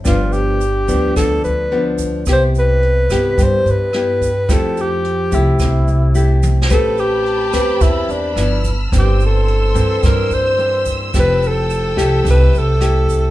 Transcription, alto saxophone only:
\new Staff \with { instrumentName = "Alto saxophone" } { \time 4/4 \key c \major \tempo 4 = 108 f'8 g'4. a'8 b'4 r8 | c''8 b'4. c''8 b'4. | a'8 g'4 e'2 r8 | a'8 g'4. e'8 d'4 r8 |
g'8 a'4. bes'8 c''4 r8 | b'8 a'4. b'8 a'4. | }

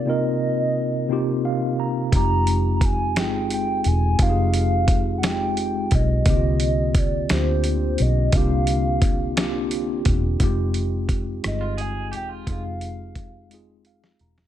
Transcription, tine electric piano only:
\new Staff \with { instrumentName = "Tine electric piano" } { \time 6/8 \key f \dorian \tempo 4. = 58 << { r2 f''8 bes''8 | r2. | r2. | r2. |
r2. | r2. | r2 f''8 bes''8 | } \\ { <c bes c' ees' f' bes'>4. <c bes c' ees' f' g'>4. | <g aes c' ees' f' g'>4. <aes c' ees' f' aes'>4. | <aes c' ees' f' g' aes'>4. <aes c' ees' f' g'>4. | <d bes c' ees' f' g'>4. <bes c' d' f' g'>4. |
<bes c' d' f' g'>4. <bes c' d' f' g'>4. | <aes c' ees' f' g'>4. <aes c' ees' f' aes'>4. | <aes c' ees' f' aes'>4. <aes c' ees' f' aes'>4. | } >> }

